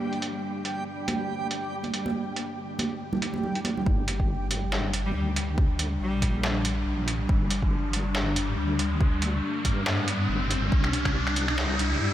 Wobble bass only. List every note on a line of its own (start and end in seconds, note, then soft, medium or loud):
3.86 5.13 G1 loud
5.15 5.99 D2 medium
6.01 6.85 A#1 medium
6.86 7.28 A#1 medium
7.29 8.56 G1 medium
8.58 9.42 D2 medium
9.65 10.28 G2 medium
10.29 10.71 G1 medium
10.72 11.99 C2 medium
12.01 12.13 G2 loud